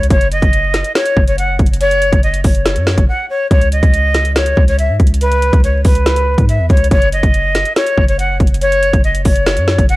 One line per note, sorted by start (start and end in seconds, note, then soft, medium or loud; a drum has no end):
0.03 closed hi-hat medium
0.10 0.41 F#1 loud
0.10 0.27 C#5 loud
0.10 kick loud
0.10 closed hi-hat medium
0.21 closed hi-hat medium
0.32 0.92 D#5 medium
0.32 closed hi-hat medium
0.42 0.83 F#1 loud
0.42 kick medium
0.42 closed hi-hat medium
0.53 closed hi-hat medium
0.74 snare medium
0.74 closed hi-hat medium
0.84 closed hi-hat medium
0.95 1.25 C#5 medium
0.95 snare loud
0.95 closed hi-hat medium
1.06 closed hi-hat medium
1.17 1.58 F#1 loud
1.17 kick loud
1.27 1.36 C#5 medium
1.27 closed hi-hat medium
1.38 1.55 F#5 medium
1.38 closed hi-hat medium
1.59 2.10 F#1 loud
1.59 kick medium
1.59 closed hi-hat soft
1.66 closed hi-hat medium
1.73 closed hi-hat medium
1.81 2.21 C#5 loud
1.81 closed hi-hat medium
1.91 closed hi-hat medium
2.02 closed hi-hat medium
2.12 2.43 F#1 loud
2.12 kick medium
2.12 closed hi-hat medium
2.23 2.40 D#5 medium
2.23 closed hi-hat soft
2.34 closed hi-hat medium
2.44 2.78 F#1 loud
2.44 3.04 C#5 medium
2.44 kick medium
2.44 open hi-hat medium
2.55 closed hi-hat medium
2.66 snare loud
2.66 closed hi-hat medium
2.76 2.97 F#2 loud
2.76 closed hi-hat medium
2.87 snare loud
2.98 3.08 F#1 loud
2.98 kick medium
2.98 closed hi-hat medium
3.08 3.25 F#5 medium
3.29 3.47 C#5 medium
3.51 3.81 C#2 loud
3.51 3.68 C#5 loud
3.51 kick loud
3.51 closed hi-hat medium
3.61 closed hi-hat medium
3.72 4.32 D#5 medium
3.72 closed hi-hat medium
3.83 4.54 C#2 loud
3.83 kick medium
3.83 closed hi-hat medium
3.94 closed hi-hat medium
4.14 snare medium
4.14 closed hi-hat medium
4.25 closed hi-hat medium
4.36 4.66 C#5 medium
4.36 snare loud
4.36 closed hi-hat medium
4.46 closed hi-hat medium
4.57 4.91 C#2 loud
4.57 kick medium
4.68 4.76 C#5 medium
4.68 closed hi-hat medium
4.78 4.96 E5 medium
4.78 closed hi-hat medium
4.89 4.99 G#2 loud
5.00 5.51 C#2 loud
5.00 kick medium
5.00 closed hi-hat soft
5.07 closed hi-hat medium
5.14 closed hi-hat medium
5.21 5.61 B4 loud
5.21 closed hi-hat medium
5.32 closed hi-hat medium
5.42 closed hi-hat medium
5.53 5.84 C#2 loud
5.53 kick loud
5.53 closed hi-hat medium
5.63 5.81 C#5 medium
5.63 closed hi-hat medium
5.85 6.36 C#2 loud
5.85 6.45 B4 medium
5.85 kick medium
5.85 open hi-hat medium
5.95 closed hi-hat medium
6.06 snare loud
6.06 closed hi-hat medium
6.16 closed hi-hat medium
6.38 6.61 G#2 loud
6.38 kick medium
6.38 closed hi-hat medium
6.49 6.66 E5 medium
6.49 closed hi-hat medium
6.59 6.69 E2 loud
6.70 6.90 C#2 loud
6.70 6.87 C#5 medium
6.70 kick medium
6.70 closed hi-hat soft
6.77 closed hi-hat medium
6.84 closed hi-hat medium
6.91 7.22 F#1 loud
6.91 7.08 C#5 loud
6.91 kick loud
6.91 closed hi-hat medium
7.02 closed hi-hat medium
7.12 7.73 D#5 medium
7.12 closed hi-hat medium
7.23 7.64 F#1 loud
7.23 kick medium
7.23 closed hi-hat medium
7.34 closed hi-hat medium
7.55 snare medium
7.55 closed hi-hat medium
7.65 closed hi-hat medium
7.76 8.06 C#5 medium
7.76 snare loud
7.76 closed hi-hat medium
7.87 closed hi-hat medium
7.98 8.38 F#1 loud
7.98 kick medium
8.08 8.17 C#5 medium
8.08 closed hi-hat medium
8.19 8.36 F#5 medium
8.19 closed hi-hat medium
8.40 8.91 F#1 loud
8.40 kick medium
8.40 closed hi-hat soft
8.47 closed hi-hat medium
8.54 closed hi-hat medium
8.61 9.01 C#5 loud
8.61 closed hi-hat medium
8.72 closed hi-hat medium
8.83 closed hi-hat medium
8.93 9.24 F#1 loud
8.93 kick medium
8.93 closed hi-hat medium
9.04 9.21 D#5 medium
9.04 closed hi-hat soft
9.15 closed hi-hat medium
9.25 9.59 F#1 loud
9.25 9.85 C#5 medium
9.25 kick medium
9.25 open hi-hat medium
9.36 closed hi-hat medium
9.46 snare loud
9.46 closed hi-hat medium
9.57 9.77 F#2 loud
9.57 closed hi-hat medium
9.68 snare loud
9.78 9.96 F#1 loud
9.78 kick medium
9.78 closed hi-hat medium
9.89 9.96 F#5 medium
9.89 closed hi-hat medium